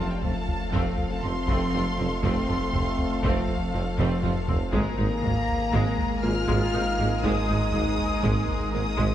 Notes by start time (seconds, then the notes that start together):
Already playing: F1 F2 F3 A3 C4 F4 A4 F5
0.00 A3
0.10 G3 G5
0.23 F1 F2 A3 C4 A5, taiko low
0.48 taiko low
0.73 F1 F2 F3 A3 C4 F5, taiko
0.98 taiko low
1.10 A3 A5
1.23 F1 F2 C4 F4 C6
1.48 F1 F2 F3 A3 C4, taiko
1.74 F1 F2 C4 F4
1.97 F1 F2 C4 F4
2.23 F1 F2 F3 A3 C4 C6, taiko
2.49 F1 F2 A3 C4 F4
2.73 F1 F2 A3 C4, taiko low
2.98 taiko low
3.23 F1 F2 F3 A3 C4 F5, taiko
3.48 taiko low
3.74 F1 F2 C4 F4
3.98 F1 F2 F3 A3 C4, taiko low-mid
4.23 F1 F2 C4 F4, taiko low-mid
4.48 F1 F2 C4 F4, taiko low
4.72 G#1 G#2 G#3 A#3 D#4 G#4 A#4 A#5, taiko
4.97 G#1 G#2 G#3 D#4
5.22 G#1 G#2 G#3 A#3 D#4, taiko low
5.48 taiko low
5.72 G#1 G#2 G#3, taiko
5.98 taiko low
6.23 G#1 G#2 G#3 A#3 F4 A#4 F6
6.48 G#1 G#2 G#3, taiko
6.73 G#1 G#2 G#3 D#4 A#4
6.98 G#1 G#2 G#3 A#3 A#4
7.23 G#1 G#2 G#3 D#4 D#6, taiko
7.48 G#1 G#2 G#3 D#4
7.72 G#1 G#2 G#3 A#3 D#4, taiko low
7.98 taiko low
8.23 G#1 G#2 G#3, taiko
8.48 taiko low
8.73 G#1 G#2 G#3 A#3 D#4 A#4 D#6
8.97 G#1 G#2 G#3, taiko